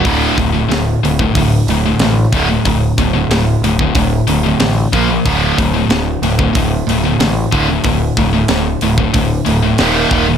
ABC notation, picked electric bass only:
X:1
M:4/4
L:1/8
Q:1/4=92
K:none
V:1 name="Picked electric bass" clef=bass
D,,, D,,, D,,, D,,, D,,, D,,, A,,, D,,, | D,,, D,,, D,,, D,,, D,,, D,,, A,,, _B,,, | D,,, D,,, D,,, D,,, D,,, D,,, A,,, D,,, | D,,, D,,, D,,, D,,, D,,, D,,, _E,,, E,,, |]